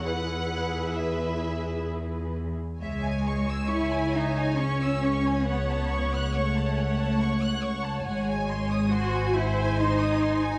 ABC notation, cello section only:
X:1
M:3/4
L:1/16
Q:1/4=69
K:E
V:1 name="Cello section"
E,,8- E,,3 z | [K:C#m] G,4 E2 D2 C4 | B,4 A,6 z2 | G,4 F2 E2 D4 |]